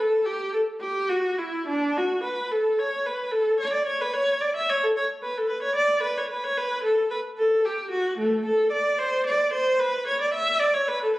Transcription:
viola
0.00 A4
0.26 G4
0.53 A4
0.81 G4
1.09 F#4
1.38 E4
1.68 D4
1.97 F#4
2.24 B4
2.51 A4
2.79 C#5
3.06 B4
3.31 A4
3.60 C#5
3.73 D5
3.87 C#5
4.01 B4
4.14 C#5
4.41 D5
4.56 E5
4.70 C#5
4.83 A4
4.97 C#5
5.23 B4
5.37 A4
5.49 B4
5.62 C#5
5.76 D5
6.03 B4
6.18 C#5
6.29 B4
6.44 C#5
6.57 B4
6.84 A4
7.11 B4
7.38 A4
7.65 G4
7.91 F#4
8.18 A3
8.45 A4
8.72 D5
8.99 C5
9.26 D5
9.53 C5
9.80 B4
10.07 C#5
10.21 D5
10.34 E5
10.60 D5
10.74 C#5
10.88 B4
11.03 A4

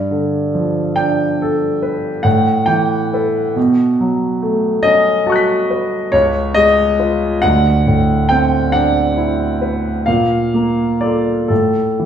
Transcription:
grand piano
Already playing: G2
0.11 D3
0.55 F3
0.96 D4 G5
1.42 A4
1.82 B4
2.23 A2 F#5
2.66 E3 G5
3.13 A4 B4
3.56 B2
4.00 F#3
4.42 A3
4.83 C#4 D#5
5.26 F#4 A5 C#6
5.32 F#6 B6
5.70 B4
6.12 C#2 C#5
6.54 G#3 D#5
6.99 F4 B4
7.42 D2 F#5
7.87 A2
8.29 C4 G5
8.72 D4 F#5
9.17 E4
9.62 B4
10.06 A#2 F5
10.54 A#3
11.01 F4 A4 D5
11.48 A2 A4
11.99 E3

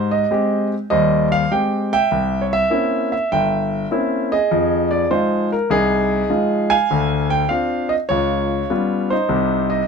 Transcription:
grand piano
Already playing: G#2 G4 C5
0.11 D#5
0.31 G#3 C4 G4
0.90 D#2 G3 C5 D#5
1.32 F5
1.51 G#3 C4 G4 G5
1.93 E5 G5
2.11 C2
2.41 C#5
2.53 E5
2.70 A#3 C4 C#4 E4
3.12 E5
3.32 G1 E5 G5
3.91 A#3 C4 C#4 E4
4.32 G#4 D#5
4.51 F2
4.91 D5
5.10 F3 G#3 D#4 F4 C5
5.52 A#4
5.70 C2 D#4 G#4
6.30 F3 G#3 D#4 F4
6.70 F5 G#5
6.91 D2 D3
7.30 G5
7.49 C4 D4 F4 F5
7.89 D#5
8.09 C#2 F4 C#5
8.70 G3 B3 C#4 F4
9.10 D#4 C5
9.29 C2 C3
9.70 D#5

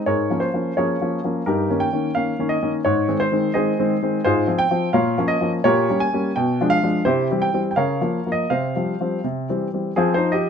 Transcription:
grand piano
0.06 G#2 G#4 A#4 C#5
0.30 F3 A#3 C#4
0.40 C5
0.54 F3 A#3 C#4
0.77 F3 A#3 C#4 G#4 A#4 C#5
1.01 F3 A#3 C#4
1.24 F3 A#3 C#4
1.46 G2 D#4 G4 A#4
1.70 D#3 A#3 C#4
1.80 G5
1.93 D#3 A#3 C#4
2.15 D#3 A#3 C#4 F5
2.39 D#3 A#3 C#4
2.49 D#5
2.62 D#3 A#3 C#4
2.85 G#2 C#5
3.08 D#3 G#3 C4
3.20 C5
3.32 D#3 G#3 C4
3.54 D#3 G#3 C4 G#4 C5 D#5
3.79 D#3 G#3 C4
4.02 D#3 G#3 C4
4.25 G#2 F4 G#4 C5
4.47 F3 C4
4.59 G5
4.71 F3 C4
4.93 A#2 A#4 C#5 F5
5.18 F3 A#3 C#4
5.28 D#5
5.41 F3 A#3 C#4
5.64 A#2 G4 A#4 C#5
5.89 G3 A#3 C#4
6.00 G#5
6.13 G3 A#3 C#4
6.36 B2 G5
6.61 F3 G#3 D4
6.70 F5
6.83 F3 G#3 D4
7.05 C3 E4 G4 C5
7.31 E3 G3 C4
7.42 G5
7.53 E3 G3 C4
7.71 G5
7.76 C#3 A#4 C#5 F5
8.01 F3 A#3
8.26 F3 A#3
8.32 D#5
8.50 C3 C5 F5
8.76 F3 G3 C4
9.01 F3 G3 C4
9.24 C3
9.50 E3 G3 C4
9.73 E3 G3 C4
9.96 F3 C4 G#4
10.14 D#4 C5
10.32 G4 D#5

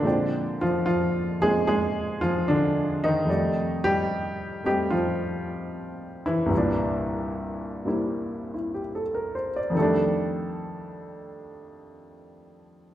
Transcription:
grand piano
Already playing: D3 D4
0.02 A#2 F3 G#3 C4 D5
0.07 G5
0.61 F3 F4
0.86 F3 F4
1.40 F3 G#3 A#3 C4 F4 G#4
1.67 G#3 G#4
2.21 F3 F4
2.48 D3 D4
3.04 D#3 D#4
3.25 F2 C3 G3 A3
3.30 D5
3.84 G3 G4
4.64 G3 A3 C4 G4 D#5
4.90 F3 F4
6.26 E3 E4
6.46 C2 G2
6.50 E3
6.55 A#2 D4
7.85 C3 G3 A#3 C4 E4
8.54 E4
8.74 G4
8.95 A4
9.15 A#4
9.35 C5
9.56 D5
9.70 F2 D#3
9.76 G3 A3 A4
9.82 D4

